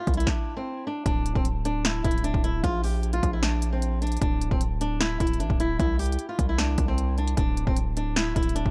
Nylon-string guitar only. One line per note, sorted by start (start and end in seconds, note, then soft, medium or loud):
0.00 0.15 F4 medium
0.17 0.26 E4 medium
0.26 0.54 D4 medium
0.57 0.84 C4 medium
0.87 1.04 D4 medium
1.06 1.33 D4 loud
1.36 1.44 C4 medium
1.65 1.83 D4 medium
1.86 2.03 E4 medium
2.05 2.22 E4 medium
2.24 2.41 D4 medium
2.44 2.61 E4 medium
2.64 2.81 F4 loud
2.84 3.12 G4 medium
3.13 3.31 F4 medium
3.33 3.42 E4 medium
3.43 3.70 D4 medium
3.73 4.00 C4 medium
4.02 4.19 D4 medium
4.21 4.49 D4 medium
4.52 4.60 C4 medium
4.81 4.98 D4 medium
5.00 5.18 E4 medium
5.20 5.38 E4 medium
5.40 5.57 D4 medium
5.60 5.77 E4 medium
5.79 5.97 E4 loud
5.99 6.27 G4 medium
6.29 6.46 F4 medium
6.49 6.57 E4 medium
6.58 6.86 D4 medium
6.88 7.16 C4 medium
7.18 7.35 D4 medium
7.37 7.65 D4 loud
7.67 7.76 C4 medium
7.97 8.14 D4 medium
8.17 8.34 E4 medium
8.36 8.54 E4 medium
8.55 8.71 D4 medium